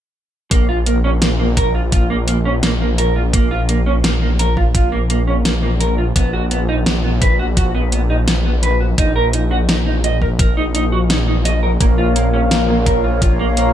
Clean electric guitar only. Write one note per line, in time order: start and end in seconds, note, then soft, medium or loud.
0.51 0.64 A#3 medium
0.69 0.78 F4 loud
0.86 0.95 A#3 medium
1.04 1.09 C#4 loud
1.22 1.27 A#3 medium
1.40 1.45 A#3 medium
1.57 1.70 A#4 medium
1.75 1.80 F4 medium
1.92 2.06 F4 medium
2.10 2.15 A#3 loud
2.28 2.36 A#3 medium
2.45 2.51 C#4 loud
2.63 2.68 A#3 medium
2.81 2.86 A#3 medium
2.98 3.11 A#4 medium
3.16 3.21 F4 medium
3.34 3.47 A#3 medium
3.51 3.60 F4 loud
3.69 3.78 A#3 medium
3.86 3.92 C#4 loud
4.04 4.09 A#3 medium
4.22 4.27 A#3 medium
4.39 4.53 A#4 medium
4.57 4.62 F4 medium
4.75 4.88 F4 medium
4.92 4.98 A#3 loud
5.10 5.19 A#3 medium
5.27 5.33 C#4 loud
5.45 5.50 A#3 medium
5.63 5.68 A#3 medium
5.80 5.94 A#4 medium
5.98 6.03 F4 medium
6.16 6.29 B3 medium
6.33 6.42 F#4 loud
6.51 6.60 B3 medium
6.69 6.74 D#4 loud
6.86 6.92 B3 medium
7.04 7.09 B3 medium
7.22 7.35 B4 medium
7.39 7.45 F#4 medium
7.57 7.70 F#4 medium
7.75 7.80 B3 loud
7.92 8.01 B3 medium
8.10 8.15 D#4 loud
8.27 8.33 B3 medium
8.45 8.51 B3 medium
8.63 8.76 B4 medium
8.80 8.86 F#4 medium
8.98 9.11 D#4 medium
9.16 9.25 A#4 medium
9.33 9.42 D#4 medium
9.51 9.56 F#4 loud
9.69 9.74 D#4 medium
9.86 9.92 D#4 medium
10.04 10.17 D#5 medium
10.22 10.27 A#4 medium
10.39 10.53 A#4 medium
10.57 10.62 D#4 loud
10.75 10.83 D#4 medium
10.92 10.98 F#4 loud
11.10 11.15 D#4 medium
11.28 11.33 D#4 medium
11.45 11.58 D#5 medium
11.63 11.68 A#4 medium
11.81 11.94 A#3 medium
11.98 12.07 F4 loud
12.16 12.25 A#3 medium
12.33 12.39 C#4 loud
12.51 12.56 A#3 medium
12.69 12.74 A#3 medium
12.86 13.00 A#4 medium
13.04 13.09 F4 medium
13.22 13.35 F4 medium
13.39 13.45 A#3 loud
13.57 13.66 A#3 medium